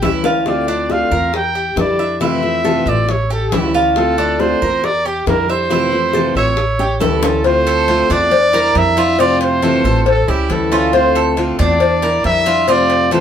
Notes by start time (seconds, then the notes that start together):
0.02 D2 E3 G3 C#4 E4, high bongo
0.24 G3 C#4 E4 F4, low bongo
0.46 D3 A3 C4 F4 D5, high bongo
0.68 A3 C4 D4 F4
0.89 D3 A3 C4 F4 F5, high bongo
1.11 E2 A3 C4 F4 A#4
1.33 G5, muted steel-string acoustic guitar stroke, high bongo
1.55 G4
1.76 F2 D3 G3 D4 E4 D5, high bongo, low bongo
1.98 G3 D4 E4 E5
2.20 C3 E3 A3 C4 E4 F4 E5, high bongo
2.42 A3 C4 F4, high bongo
2.64 C3 E3 A3 C4 F4 A4, high bongo
2.86 A1 A3 C4 F4 D5 E5
3.09 C#5, muted steel-string acoustic guitar stroke, high bongo
3.30 G4 A4, high bongo
3.52 D2 E3 G3 C#4 E4, high bongo, low bongo
3.74 G3 C#4 E4 F4, high bongo
3.96 D3 A3 C4 F4 A4, high bongo
4.17 A3 C4 D4 F4
4.39 D3 A3 C4 F4 C5, high bongo
4.61 E2 A3 C4 F4 A#4
4.83 D5, muted steel-string acoustic guitar stroke, high bongo
5.06 G4
5.26 F2 D3 G3 D4 E4 A#4, high bongo, low bongo
5.48 G3 D4 E4 C5 E5
5.69 C3 E3 A3 C4 E4 F4, high bongo
5.92 A3 C4 F4, high bongo
6.13 C3 E3 A3 C4 F4 A4, high bongo
6.35 A1 A3 C4 F4 C#5 E5
6.57 muted steel-string acoustic guitar stroke, high bongo
6.79 G4, high bongo
7.00 D2 E3 G3 C#4 E4 A4, low bongo
7.22 G3 C#4 E4 F4, low bongo
7.44 D3 A3 C4 F4 C5, cowbell
7.67 A4, cowbell
7.88 D3 A3 C4 F4, cowbell
8.10 E2 A3 C4 D4 F4 D5, cowbell
8.31 muted steel-string acoustic guitar stroke, cowbell
8.53 G3 D4 E4 A#4, cowbell
8.75 F2 D3 G3 D4 E4 E5, cowbell
8.97 G3 D4 E4 F4, cowbell
9.18 C3 A3 C4 F4 D5, cowbell
9.41 C5, cowbell
9.62 C3 E3 A3 C4 F4 A4, cowbell
9.84 A1 A3 C4 F4 A4
10.06 A4, muted steel-string acoustic guitar stroke, cowbell
10.27 C#2 G3 C#4 E4 G4
10.49 D2 E3 G3 C#4 E4 A4, cowbell
10.71 G3 C#4 E4 F4, cowbell
10.93 D3 A3 C4 F4 C5, cowbell
11.15 A4, cowbell
11.37 D3 A3 C4 F4, cowbell
11.59 E2 A3 C4 D4 F4 D5, cowbell
11.80 muted steel-string acoustic guitar stroke, cowbell
12.02 G3 D4 E4 A#4, cowbell
12.24 F2 D3 G3 D4 E4 E5, cowbell
12.46 G3 D4 E4 F4, cowbell
12.68 C3 A3 C4 F4 D5, cowbell
12.90 cowbell
13.11 C3 E3 A3 C4 F4 A4 C5, cowbell